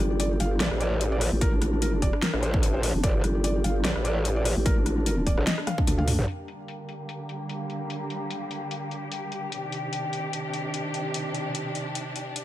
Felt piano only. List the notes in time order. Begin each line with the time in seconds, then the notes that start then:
0.11 G4
0.20 D5
0.31 G4
0.40 F5
0.51 G4
0.60 D5
0.71 G4
0.81 D5
0.92 G4
1.01 G4
1.12 D5
1.21 G4
1.32 G4
1.42 A#4
1.52 D4
1.62 D4
1.73 D4
1.82 A#4
1.93 D4
2.02 D5
2.13 D4
2.23 A#4
2.33 D4
2.43 C5
2.54 D4
2.63 D4
2.74 C5
2.83 D4
2.94 D4
3.04 D5
3.15 G4
3.24 G4
3.35 G4
3.44 D5
3.55 G4
3.64 F5
3.75 G4
3.85 D5
3.96 G4
4.05 D5
4.16 G4
4.25 G4
4.36 D5
4.45 G4
4.56 G4
4.66 A#4
4.77 D4
4.86 D4
4.97 D4
5.06 A#4
5.17 D4
5.27 D5
5.37 D4
5.47 D#5
5.58 D4
5.67 F5
5.78 D4
5.87 D4
5.98 F5
6.08 D4
6.19 D4